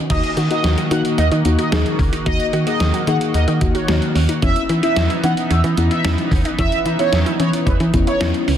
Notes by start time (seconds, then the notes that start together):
0.10 D#2 D#3 A#3 D#4 F#4 D#5, kick, closed hi-hat, crash
0.24 closed hi-hat
0.37 D#3 F#4, closed hi-hat
0.51 A#3 D#4 F#4 D#5, closed hi-hat
0.64 D#2, snare, closed hi-hat
0.78 F#4, closed hi-hat
0.91 D#3 A#3 D#4 F#4 F#5, closed hi-hat
1.05 closed hi-hat
1.18 D#2 D#4 D#5, closed hi-hat
1.32 D#3 D#4, closed hi-hat
1.45 D#2 A#3 D#4 F#4, closed hi-hat
1.59 F#4 D#5, closed hi-hat
1.72 D#2 A#3 D#4 G#4, snare, closed hi-hat
1.86 closed hi-hat
1.99 C#2 C#4, kick, open hi-hat
2.13 D#4, closed hi-hat
2.26 D#2 A#3 D#4 F#4 D#5, kick, closed hi-hat
2.40 closed hi-hat
2.53 D#3 F#4, closed hi-hat
2.67 A#3 D#4 F#4 G#4 D#5, closed hi-hat
2.80 D#2, snare, closed hi-hat
2.94 F#4, closed hi-hat
3.07 D#3 A#3 D#4 G#4 F#5, closed hi-hat
3.21 closed hi-hat
3.34 D#2 D#4 D#5, closed hi-hat
3.48 D#3 D#4, closed hi-hat
3.61 D#2 A#3 D#4 F#4, kick, closed hi-hat
3.75 F#4 C#5, closed hi-hat
3.88 D#2 A#3 D#4 F#4, snare, closed hi-hat
4.02 closed hi-hat
4.15 D#2 C#4, open hi-hat
4.29 D#4, closed hi-hat
4.42 E2 E3 B3 C#4 D#4 E4 E5, kick, closed hi-hat
4.56 closed hi-hat
4.69 E3 E4, closed hi-hat
4.83 B3 C#4 E4 E5, closed hi-hat
4.96 E2, snare, closed hi-hat
5.10 E4, closed hi-hat
5.23 E3 B3 C#4 D#4 F#5, closed hi-hat
5.37 closed hi-hat
5.50 E2 C#4 E5, closed hi-hat
5.64 E3 C#4, closed hi-hat
5.77 E2 B3 C#4 E4, closed hi-hat
5.91 E4 E5, closed hi-hat
6.05 E2 B3 C#4 D#4 E4, snare, closed hi-hat
6.18 closed hi-hat
6.31 D#2 C#4, kick, open hi-hat
6.45 D#4, closed hi-hat
6.59 E2 B3 C#4 E4 E5, kick, closed hi-hat
6.72 closed hi-hat
6.86 E3 E4, closed hi-hat
6.99 B3 C#4 E4 C#5, closed hi-hat
7.13 E2, snare, closed hi-hat
7.26 E4, closed hi-hat
7.40 E3 B3 C#4 E4 C#5, closed hi-hat
7.53 closed hi-hat
7.67 E2 C#4 B4, kick, closed hi-hat
7.80 E3 C#4, closed hi-hat
7.94 E2 B3 C#4 E4, kick, closed hi-hat
8.07 E4 C#5, closed hi-hat
8.21 E2 B3 C#4 D#4 E4, snare, closed hi-hat
8.34 closed hi-hat
8.48 C#2 C#4, open hi-hat